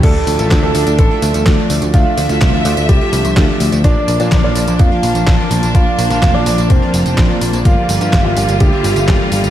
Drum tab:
CC |x---------------|----------------|----------------|----------------|
HH |x-oxx-oxx-oxx-ox|x-oxx-oxx-oxx-ox|x-oxx-oxx-oxx-ox|x-oxx-oxx-oxx-ox|
TB |x-xxx-xxx-xxx-xx|x-xxx-xxx-xxx-xx|x-xxx-xxx-xxx-xx|x-xxx-xxx-xxx-xx|
CP |----x-------x---|----x-------x---|----x-------x---|----x-------x---|
SD |----o-------o---|---oo-------o---|----o-------o---|---oo-------o---|
BD |o---o---o---o---|o---o---o---o---|o---o---o---o---|o---o---o---o---|

CC |----------------|
HH |x-oxx-oxx-oxx-ox|
TB |x-xxx-xxx-xxx-xx|
CP |----x-------x---|
SD |----o-------o---|
BD |o---o---o---o---|